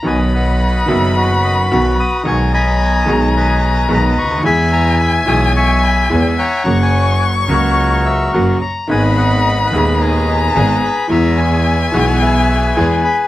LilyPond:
<<
  \new Staff \with { instrumentName = "Violin" } { \time 4/4 \key b \major \tempo 4 = 108 b''1 | ais''1 | gis''1 | cis'''2.~ cis'''8 r8 |
b''2 ais''2 | gis''1 | }
  \new Staff \with { instrumentName = "Bandoneon" } { \time 4/4 \key b \major << { gis''8 fis''4 e''8 dis''8 dis''8 b''8 dis'''8 | cis'''8 b''4 ais''8 gis''8 gis''8 ais''8 cis'''8 | b''8 ais''8 b''8 dis'''8 cis'''8 b''8 gis''8 ais''8~ | ais''16 gis''8. fis''8 cis''4 e''8 fis''8 ais''8 |
gis''8 fis''8.~ fis''32 fis''32 e''8 dis''8 dis''8 gis''8 b''8 | ais''8 gis''8 gis''8 fis''16. fis''32 e''8 e''8 gis''8 b''8 | } \\ { <b' dis''>8 <b' dis''>4. <fis' b'>2 | gis''8 <dis'' gis''>4. <b' dis''>2 | <e'' gis''>2 <e'' gis''>4. <cis'' fis''>8~ | <cis'' fis''>16 cis''4~ cis''16 <fis' ais'>2 r8 |
<b' dis''>8 <b' dis''>4. <gis' b'>2 | e''2 <gis' b'>2 | } >> }
  \new Staff \with { instrumentName = "String section" } { \time 4/4 \key b \major r1 | r1 | r1 | r1 |
<b dis' gis'>4. <b dis' gis'>4. <b dis' gis'>8 r8 | <b e' gis'>4. <b e' gis'>4. <b e' gis'>8 r8 | }
  \new Staff \with { instrumentName = "Upright piano" } { \clef bass \time 4/4 \key b \major <b,, b, dis fis b fis'>4. <fis,, fis, dis fis b fis'>4. <b,, b, dis fis b fis'>8 r8 | <b,, b, dis gis b gis'>4. <b,, b, dis gis b gis'>4. <b,, b, dis gis b gis'>8 r32 cis,32 d,32 dis,32 | <e, e gis b gis'>4. <b,, b, e gis b gis'>4. <e, e gis b gis'>8 r8 | <fis, cis fis ais fis'>4. <cis, cis fis ais fis'>4. <fis, cis fis ais fis'>8 r8 |
<gis,, gis, dis gis b gis'>4. <dis,, dis, dis gis b gis'>4. <gis,, gis, dis gis b gis'>8 r8 | <e, e gis b gis'>4. <b,, b, e gis b gis'>4. <e, e gis b gis'>8 r8 | }
  \new Staff \with { instrumentName = "Double bass" } { \clef bass \time 4/4 \key b \major b,,4. fis,,4. b,,8 r8 | b,,4. b,,4. b,,8 d,8 | e,4. b,,4. e,8 r8 | fis,,4. cis,4. fis,,8 r8 |
gis,,4. dis,4. gis,,8 r8 | e,4. b,,4. e,8 r8 | }
>>